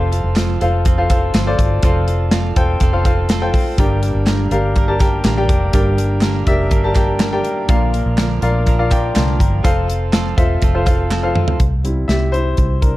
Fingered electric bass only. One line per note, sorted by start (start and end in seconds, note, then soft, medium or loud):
0.00 0.22 F1 loud
0.24 0.58 F1 medium
0.61 1.31 F1 medium
1.34 1.57 G1 medium
1.58 1.81 G1 loud
1.83 2.53 F1 loud
2.56 2.79 E1 medium
2.81 3.50 F1 medium
3.78 4.12 G1 loud
4.15 4.49 G1 medium
4.51 5.21 G1 medium
5.24 5.47 A1 medium
5.49 5.72 F1 medium
5.73 6.43 G1 loud
6.47 6.71 F1 medium
6.71 7.41 G1 medium
7.69 8.03 A#1 loud
8.06 8.40 A#1 medium
8.42 9.12 A#1 medium
9.16 9.39 C2 medium
9.40 9.63 G1 medium
9.64 10.34 F1 medium
10.38 10.60 E1 medium
10.62 11.32 F1 medium
11.60 12.05 C2 medium
12.08 12.54 C2 medium
12.58 12.97 C2 medium